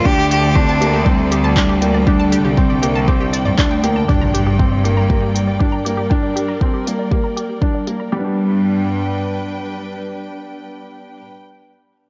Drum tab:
HH |-x-x-x-x|-x-x-x-x|-x-x-x-x|-x-x-x-x|
CP |------x-|------x-|--------|--------|
BD |o-o-o-o-|o-o-o-o-|o-o-o-o-|o-o-o-o-|

HH |--------|--------|
CP |--------|--------|
BD |--------|--------|